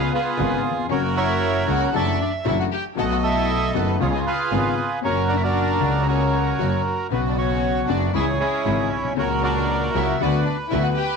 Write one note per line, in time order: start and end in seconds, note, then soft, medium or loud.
0.00 0.11 F4 medium
0.00 0.13 G#4 medium
0.00 0.13 B4 medium
0.00 0.12 F5 loud
0.13 0.61 B3 medium
0.13 0.87 F4 medium
0.13 0.87 G#4 medium
0.13 0.61 B4 medium
0.38 0.60 G#1 loud
0.38 0.60 G#1 medium
0.38 0.60 G#2 medium
0.38 0.60 C#3 medium
0.38 0.60 G#3 medium
0.38 0.60 B3 medium
0.38 0.60 C#4 medium
0.38 0.60 F4 medium
0.71 0.77 D#2 medium
0.77 0.83 E2 medium
0.84 0.90 F2 medium
0.88 1.63 F#1 loud
0.88 1.63 F#2 medium
0.88 1.62 C#3 medium
0.88 1.63 F#3 medium
0.88 1.63 A#3 medium
0.88 1.64 A#3 medium
0.88 1.63 C#4 medium
0.88 1.01 C#4 medium
0.88 1.63 F#4 medium
0.88 1.90 F#4 medium
0.88 1.15 A#4 medium
0.88 1.02 C#5 loud
0.92 1.65 F#4 medium
1.15 1.63 E4 medium
1.15 1.90 A#4 medium
1.15 1.90 C#5 medium
1.15 1.64 E5 loud
1.67 1.89 C#2 loud
1.67 1.89 C#2 medium
1.67 1.89 C#3 medium
1.67 1.89 F#3 medium
1.67 1.89 A#3 medium
1.67 1.88 C#4 medium
1.67 1.89 F#4 medium
1.67 1.92 F#4 medium
1.67 1.95 F#5 medium
1.92 2.15 F#1 loud
1.92 2.15 F#2 medium
1.92 2.15 E3 medium
1.92 2.15 F#3 medium
1.92 2.15 A3 medium
1.92 2.14 D4 medium
1.92 2.15 D4 medium
1.92 2.14 E4 medium
1.92 2.14 F#4 loud
1.92 2.15 F#4 medium
1.92 2.18 A4 medium
1.92 2.20 D5 medium
1.92 2.46 E5 medium
1.96 2.18 A5 loud
2.21 2.32 D4 medium
2.21 2.32 D5 medium
2.44 2.67 F#1 loud
2.44 2.67 F#2 loud
2.44 2.66 E3 medium
2.44 2.67 F#3 medium
2.44 2.66 A3 medium
2.44 2.66 D4 medium
2.44 2.67 D4 medium
2.44 2.66 E4 medium
2.44 2.58 E4 medium
2.44 2.66 F#4 medium
2.44 2.67 F#4 medium
2.44 2.58 E5 loud
2.60 2.65 F#4 medium
2.60 2.65 F#5 medium
2.72 2.84 G4 medium
2.72 2.85 G5 loud
2.95 3.70 B1 loud
2.95 3.70 B2 medium
2.95 3.69 F#3 medium
2.95 3.70 A3 medium
2.95 3.69 B3 medium
2.95 3.70 B3 medium
2.95 3.70 F#4 medium
2.95 3.71 F#4 medium
2.95 3.70 A4 loud
2.95 3.04 A4 medium
2.95 3.97 D#5 medium
2.95 3.10 F#5 medium
2.99 3.04 A5 loud
3.11 3.16 F#4 medium
3.11 3.17 F#5 medium
3.23 3.72 E4 medium
3.23 3.96 A4 medium
3.23 3.71 E5 loud
3.74 3.96 F#1 medium
3.74 3.96 F#1 loud
3.74 3.96 F#2 medium
3.74 3.96 D#3 medium
3.74 3.95 A3 medium
3.74 3.95 B3 medium
3.74 3.96 B3 medium
3.74 3.98 B3 medium
3.74 3.96 D#4 medium
3.74 3.96 F#4 medium
3.74 3.96 A4 medium
3.74 3.99 B4 medium
4.00 4.21 C#2 loud
4.00 4.22 C#2 medium
4.00 4.22 C#3 medium
4.00 4.21 G#3 medium
4.00 4.21 B3 medium
4.00 4.22 B3 medium
4.00 4.21 C#4 medium
4.00 4.12 C#4 medium
4.00 4.21 F4 medium
4.00 4.99 F4 medium
4.00 4.22 F4 medium
4.00 4.25 G#4 medium
4.00 4.14 C#5 medium
4.14 4.19 D#4 medium
4.14 4.20 D#5 medium
4.26 4.74 F4 medium
4.26 5.00 G#4 medium
4.26 4.99 B4 medium
4.26 4.74 F5 medium
4.51 4.73 G#1 loud
4.51 4.73 G#1 medium
4.51 4.73 G#2 medium
4.51 4.73 C#3 medium
4.51 4.73 G#3 medium
4.51 4.73 B3 medium
4.51 4.73 C#4 medium
4.51 4.73 F4 medium
5.01 5.77 F#1 loud
5.01 5.77 F#2 medium
5.01 5.76 A#2 medium
5.01 5.77 F#3 medium
5.01 5.77 A#3 medium
5.01 5.27 C#4 medium
5.01 5.77 F#4 medium
5.01 5.42 F#4 medium
5.01 5.43 A#4 medium
5.01 5.28 C#5 loud
5.06 5.78 F#4 medium
5.29 5.36 D4 medium
5.29 5.35 D5 loud
5.37 5.43 E4 medium
5.37 5.43 E5 medium
5.43 6.03 D4 medium
5.43 6.07 F#4 medium
5.43 6.07 A#4 medium
5.43 6.02 D5 loud
5.80 6.54 C#2 medium
5.80 6.55 C#2 loud
5.80 6.54 C#3 medium
5.80 6.54 F#3 medium
5.80 6.54 A#3 medium
5.80 6.55 A#3 medium
5.80 6.54 C#4 medium
5.80 6.54 F#4 medium
5.80 6.55 F#4 medium
6.07 6.81 C#4 medium
6.07 7.07 F#4 medium
6.07 7.07 A#4 medium
6.07 6.81 C#5 medium
6.58 6.80 F#1 medium
6.58 6.80 F#2 medium
6.58 6.80 C#3 medium
6.58 6.80 F#3 medium
6.58 6.80 A#3 medium
6.58 6.80 C#4 medium
6.58 6.80 F#4 medium
6.58 6.81 F#4 medium
7.09 7.84 B1 loud
7.09 7.84 B1 medium
7.09 7.85 B2 medium
7.09 7.83 C#3 medium
7.09 7.84 F#3 medium
7.09 7.84 B3 medium
7.09 7.19 B3 medium
7.09 7.85 B3 medium
7.09 7.84 C#4 medium
7.09 7.84 F#4 medium
7.09 7.36 F#4 medium
7.09 7.21 B4 medium
7.13 7.86 F#4 medium
7.28 7.35 D4 medium
7.28 7.36 D5 medium
7.36 7.84 C#4 medium
7.36 8.10 F#4 medium
7.36 7.85 C#5 loud
7.88 8.09 F#1 loud
7.88 8.10 F#1 medium
7.88 8.10 F#2 medium
7.88 8.10 C#3 medium
7.88 8.10 F#3 medium
7.88 8.09 B3 medium
7.88 8.10 B3 medium
7.88 8.10 C#4 medium
7.88 8.12 D4 medium
7.88 8.10 F#4 medium
7.88 8.12 D5 medium
8.13 8.35 C#2 loud
8.13 8.35 C#2 medium
8.13 8.35 C#3 medium
8.13 8.35 E3 medium
8.13 8.35 G#3 medium
8.13 8.36 G#3 medium
8.13 8.35 C#4 medium
8.13 8.25 E4 medium
8.13 8.35 E4 medium
8.13 8.39 G#4 medium
8.13 9.14 C#5 medium
8.13 8.26 E5 loud
8.40 8.88 G#3 medium
8.40 9.13 C#4 medium
8.40 9.13 E4 medium
8.40 8.88 G#4 medium
8.64 8.87 G#1 loud
8.64 8.87 G#1 medium
8.64 8.87 G#2 medium
8.64 8.87 C#3 medium
8.64 8.87 E3 medium
8.64 8.86 G#3 medium
8.64 8.87 G#3 medium
8.64 8.87 C#4 medium
8.64 8.87 E4 medium
8.91 9.17 B1 medium
8.97 9.04 A#1 soft
9.04 9.11 B1 medium
9.10 9.17 C2 medium
9.16 9.90 C#2 medium
9.16 9.91 C#2 loud
9.16 9.90 A#2 medium
9.16 9.90 F#3 medium
9.16 9.90 A#3 medium
9.16 9.91 A#3 medium
9.16 9.28 C#4 medium
9.16 9.90 F#4 loud
9.16 9.91 F#4 medium
9.16 9.43 F#4 medium
9.16 9.42 A#4 medium
9.16 9.29 C#5 medium
9.42 9.90 D4 medium
9.42 10.17 F#4 medium
9.42 10.16 A#4 medium
9.42 9.91 D5 loud
9.93 10.16 C#2 loud
9.93 10.16 C#2 medium
9.93 10.16 C#3 medium
9.93 10.16 F#3 medium
9.93 10.16 A#3 medium
9.93 10.16 C#4 medium
9.93 10.17 E4 medium
9.93 10.16 F#4 medium
9.93 10.21 E5 medium
10.18 10.42 D2 loud
10.18 10.42 D2 medium
10.18 10.42 D3 medium
10.18 10.42 F#3 medium
10.18 10.42 B3 medium
10.18 10.42 D4 medium
10.18 10.43 F#4 medium
10.18 10.42 F#4 medium
10.18 11.17 B4 medium
10.18 10.44 D5 medium
10.18 10.44 F#5 medium
10.44 10.56 D4 medium
10.44 10.57 D5 medium
10.69 10.93 D2 loud
10.69 10.93 D2 medium
10.69 10.94 D3 medium
10.69 10.93 F#3 medium
10.69 10.93 B3 medium
10.69 10.93 D4 medium
10.69 10.82 E4 medium
10.69 10.93 F#4 medium
10.69 10.83 E5 medium
10.73 10.94 B3 medium
10.73 10.94 F#4 medium
10.81 10.88 F#4 medium
10.81 10.89 F#5 medium
10.95 11.17 G4 medium
10.95 11.17 G5 loud